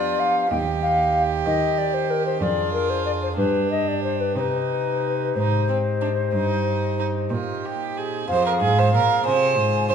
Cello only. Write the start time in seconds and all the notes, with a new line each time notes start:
Already playing: F3
0.52 D#2
1.46 D#3
2.41 F2
3.37 G2
4.36 C3
5.36 G#2
6.33 G2
7.31 A#2
8.29 F2
8.61 G#2
8.93 A#2
9.25 C3
9.57 G#2
9.89 G2